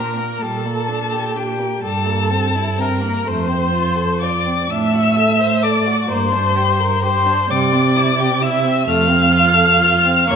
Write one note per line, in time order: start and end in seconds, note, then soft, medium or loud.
0.00 0.18 A#2 medium
0.00 0.18 D4 medium
0.00 0.43 A#4 medium
0.00 0.43 A#5 medium
0.16 0.44 A#3 medium
0.41 1.59 A#2 medium
0.41 0.67 G3 medium
0.41 1.38 A4 medium
0.41 1.38 A5 medium
0.66 0.90 A#3 soft
0.89 1.14 D4 soft
1.12 1.37 G4 medium
1.36 1.61 D4 medium
1.36 1.83 G4 medium
1.36 1.82 G5 medium
1.59 1.82 A#3 soft
1.83 3.03 G2 medium
1.83 2.08 G3 medium
1.83 2.82 A4 medium
1.83 2.81 A5 loud
2.06 2.32 A#3 medium
2.30 2.57 C4 medium
2.55 2.80 E4 medium
2.78 3.03 C4 medium
2.78 3.29 A#4 medium
2.78 3.29 A#5 medium
3.01 3.25 A#3 medium
3.25 4.47 F2 medium
3.25 3.50 A3 medium
3.25 4.24 C5 medium
3.25 4.20 C6 loud
3.48 3.74 C4 medium
3.73 3.97 F4 medium
3.96 4.23 A4 medium
4.21 4.47 F4 medium
4.21 4.72 D5 medium
4.21 4.72 D6 medium
4.45 4.70 C4 medium
4.69 5.86 A2 medium
4.69 4.95 D4 medium
4.69 5.66 E5 loud
4.69 5.65 E6 loud
4.94 5.18 F#4 medium
5.17 5.42 A4 medium
5.40 5.65 C5 medium
5.63 5.87 A4 medium
5.63 6.09 D5 loud
5.63 6.10 D6 medium
5.86 6.08 F#4 medium
6.09 7.27 G2 medium
6.09 6.34 A#3 medium
6.09 7.02 C5 medium
6.09 7.03 C6 loud
6.32 6.57 D4 medium
6.56 6.81 G4 medium
6.80 7.04 A#4 medium
7.03 7.28 G4 medium
7.03 7.52 C5 medium
7.03 7.52 C6 loud
7.27 7.49 D4 medium
7.49 8.65 C3 loud
7.49 7.74 G3 medium
7.49 8.43 D5 medium
7.49 8.44 D6 loud
7.73 7.98 C4 medium
7.96 8.20 E4 medium
8.19 8.43 G4 medium
8.42 8.66 E4 medium
8.42 8.90 E5 loud
8.42 8.86 E6 loud
8.65 8.87 C4 medium
8.87 10.06 F2 medium
8.87 9.11 A3 medium
8.87 10.32 F5 loud
8.87 10.27 F6 loud
9.09 9.33 C4 medium
9.32 9.55 F4 medium
9.54 9.81 A4 medium
9.80 10.06 F4 medium
10.05 10.28 C4 medium
10.28 10.36 E2 loud
10.28 10.36 A#3 medium
10.28 10.36 C#5 loud
10.28 10.36 C#6 loud